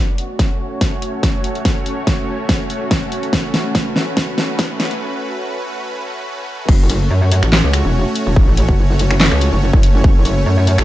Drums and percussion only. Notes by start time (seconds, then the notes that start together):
0.18 closed hi-hat
0.39 kick, snare, closed hi-hat
0.81 kick, snare, closed hi-hat
1.02 closed hi-hat
1.23 kick, snare, closed hi-hat
1.44 closed hi-hat
1.55 closed hi-hat
1.65 kick, snare, closed hi-hat
1.86 closed hi-hat
2.07 kick, snare, closed hi-hat
2.49 kick, snare, closed hi-hat
2.70 closed hi-hat
2.91 kick, snare, closed hi-hat
3.12 closed hi-hat
3.23 closed hi-hat
3.33 kick, snare, closed hi-hat
3.54 snare, closed hi-hat
3.75 kick, snare, closed hi-hat
3.96 snare
4.17 kick, snare, closed hi-hat
4.38 snare, closed hi-hat
4.59 kick, snare, closed hi-hat
4.80 snare, closed hi-hat
4.91 closed hi-hat
6.69 kick, crash
6.90 closed hi-hat
7.32 closed hi-hat
7.43 finger snap, closed hi-hat
7.53 snare, clap
7.73 finger snap, closed hi-hat
8.15 closed hi-hat
8.36 kick
8.57 closed hi-hat
8.69 kick
8.99 closed hi-hat
9.11 finger snap, closed hi-hat
9.20 snare, clap
9.32 finger snap
9.41 closed hi-hat
9.73 kick
9.83 closed hi-hat
10.04 kick
10.25 closed hi-hat
10.67 closed hi-hat
10.78 finger snap, closed hi-hat